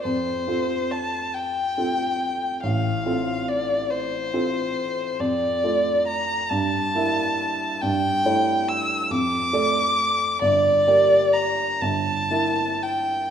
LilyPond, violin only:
\new Staff \with { instrumentName = "Violin" } { \time 6/8 \key f \major \tempo 4. = 46 c''4 a''8 g''4. | f''4 d''8 c''4. | \key d \minor d''4 bes''8 a''4. | g''4 e'''8 d'''4. |
d''4 bes''8 a''4 g''8 | }